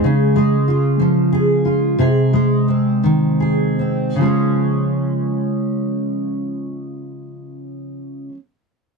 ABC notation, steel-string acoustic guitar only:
X:1
M:6/8
L:1/8
Q:3/8=50
K:Db
V:1 name="Steel-string acoustic guitar"
[D,A] A, F F, A F | [C,A] A, C E, A C | [D,F,A,DA]6- | [D,F,A,DA]6 |]